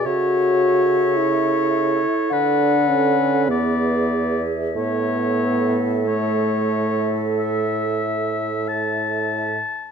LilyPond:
<<
  \new Staff \with { instrumentName = "Flute" } { \time 4/4 \key a \major \tempo 4 = 47 e''2 fis''4 e''4~ | e''2.~ e''8 r8 | }
  \new Staff \with { instrumentName = "Oboe" } { \time 4/4 \key a \major cis''2 b'4 d''8. r16 | cis''4 cis''4 e''4 a''4 | }
  \new Staff \with { instrumentName = "Clarinet" } { \time 4/4 \key a \major a'2. gis'4 | a'2.~ a'8 r8 | }
  \new Staff \with { instrumentName = "French horn" } { \time 4/4 \key a \major fis'4 e'4 d'8 cis'8 b8. r16 | b4 a2 r4 | }
  \new Staff \with { instrumentName = "Bassoon" } { \clef bass \time 4/4 \key a \major cis4.~ cis16 r16 d4 e,4 | a,2.~ a,8 r8 | }
>>